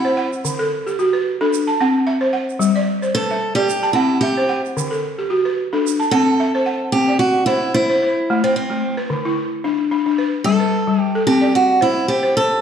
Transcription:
Already playing: E4 E5
0.05 C5
0.17 F#5
0.33 shaker
0.45 D3, shaker
0.59 A4
0.86 G4, shaker
0.99 F#4, shaker
1.13 B4
1.41 D4 A4
1.53 shaker
1.67 A5
1.81 C4 F#5
2.07 E5
2.21 C5
2.33 F#5
2.49 shaker
2.59 G3, shaker
2.76 D5
3.02 C5, shaker
3.14 A4 B4, shaker
3.31 E5
3.55 G4 D5
3.69 shaker
3.83 A5
3.93 C4 E4 F#5
4.21 G4 E5
4.37 C5
4.49 F#5
4.65 shaker
4.77 D3, shaker
4.91 A4, shaker
5.18 G4
5.30 F#4
5.45 B4
5.73 D4 A4
5.87 shaker
6.00 A5, shaker
6.11 C4 A4 F#5
6.40 E5
6.55 C5
6.66 F#5
6.92 C4 G4
7.08 D5
7.19 F#4
7.46 E4 C5
7.74 E4 C5
7.89 C5
8.02 C5
8.30 A3
8.44 C4 C5
8.56 C4
8.70 A3
8.97 B4
9.10 D3
9.25 E4
9.64 D4
9.91 D4
10.06 D4
10.18 B4
10.44 G3 A4
10.60 B4
10.87 G3
11.01 G4
11.15 A4
11.27 C4 G4
11.41 D5
11.55 F#4
11.81 E4 C5
12.08 G4 C5
12.23 C5
12.36 A4 C5

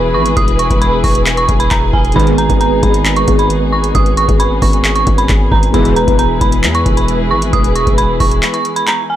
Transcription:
Already playing: E1 E3 G#3 B3 E4 G#4 B4 B5
0.14 G#1 C#6
0.26 closed hi-hat
0.37 E1 D#6, kick, closed hi-hat
0.48 closed hi-hat
0.59 C#6, closed hi-hat
0.70 E1, kick, closed hi-hat
0.81 B5, closed hi-hat
1.04 E1 C#6, kick, open hi-hat
1.15 closed hi-hat
1.26 clap, closed hi-hat
1.37 C#6, closed hi-hat
1.49 E1, kick, closed hi-hat
1.60 B5, closed hi-hat
1.71 E1 A#5, kick, clap, closed hi-hat
1.93 E1 G#5, kick
2.05 closed hi-hat
2.12 G#1 G#2 B2 D#3 G#3 B3 D#4 B5, kick, closed hi-hat
2.16 G#4 B4, closed hi-hat
2.27 closed hi-hat
2.38 A#5, closed hi-hat
2.49 G#1, kick, closed hi-hat
2.61 A#5, closed hi-hat
2.83 G#1 B5, kick, closed hi-hat
2.94 closed hi-hat
3.05 clap, closed hi-hat
3.16 C#6, closed hi-hat
3.28 G#1, kick, closed hi-hat
3.39 B5, closed hi-hat
3.50 closed hi-hat
3.72 C#6
3.84 closed hi-hat
3.95 G#1 C#4 D#6, kick, closed hi-hat
4.06 closed hi-hat
4.17 C#6, closed hi-hat
4.29 G#1, kick, closed hi-hat
4.40 B5, closed hi-hat
4.62 G#1 C#6, kick, open hi-hat
4.73 closed hi-hat
4.85 clap, closed hi-hat
4.96 C#6, closed hi-hat
5.07 G#1, kick, closed hi-hat
5.18 B5, closed hi-hat
5.29 G#1, kick, clap, closed hi-hat
5.52 G#1 A#5, kick
5.63 closed hi-hat
5.72 E1 G#2 B2 E3 G#3 B3 E4 G#4 B4 B5, kick, closed hi-hat
5.85 closed hi-hat
5.96 A#5, closed hi-hat
6.08 E1, kick, closed hi-hat
6.19 A#5, closed hi-hat
6.41 E1 B5, kick, closed hi-hat
6.52 closed hi-hat
6.64 E2, clap, closed hi-hat
6.75 C#6, closed hi-hat
6.86 E1, kick, closed hi-hat
6.97 B5, closed hi-hat
7.08 closed hi-hat
7.31 G#1 C#6
7.42 closed hi-hat
7.53 E1 D#6, kick, closed hi-hat
7.64 closed hi-hat
7.76 C#6, closed hi-hat
7.87 E1, kick, closed hi-hat
7.98 B5, closed hi-hat
8.20 E1 C#6, kick, open hi-hat
8.31 closed hi-hat
8.43 clap, closed hi-hat
8.54 C#6, closed hi-hat
8.65 closed hi-hat
8.76 B5, closed hi-hat
8.87 A#5, clap, closed hi-hat
9.10 G#5

